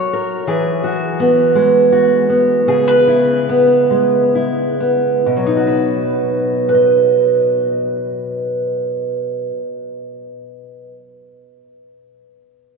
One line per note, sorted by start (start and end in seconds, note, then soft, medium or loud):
0.00 1.54 F#3 medium
0.00 0.42 F#4 soft
0.00 0.12 A#4 soft
0.00 0.43 C#5 medium
0.13 0.43 A#4 soft
0.47 2.62 E3 medium
0.47 2.67 G#4 medium
0.84 1.91 F#4 soft
1.20 2.29 B3 medium
1.55 2.62 G#3 soft
1.92 2.62 F#4 soft
2.30 3.48 B3 soft
2.68 5.27 C#3 medium
2.68 2.88 G#4 medium
2.88 5.27 B4 soft
3.08 4.34 E4 soft
3.49 4.79 B3 soft
3.90 5.21 G#3 soft
4.35 5.21 E4 soft
4.80 5.46 B3 soft
5.26 9.50 B2 soft
5.37 9.61 F#3 soft
5.46 6.68 D#4 soft
5.57 6.74 F#4 soft
5.67 6.69 B4 soft
6.69 10.93 B4 soft
6.74 10.98 D#5 soft